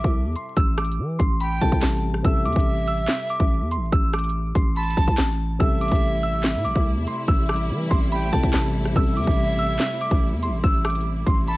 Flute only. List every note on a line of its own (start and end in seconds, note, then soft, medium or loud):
0.00 0.53 E5 loud
1.41 1.80 G5 medium
2.25 3.88 E5 loud
4.76 5.16 A5 loud
5.60 7.24 E5 loud
8.12 8.52 G5 medium
8.96 10.60 E5 loud
11.47 11.57 A5 loud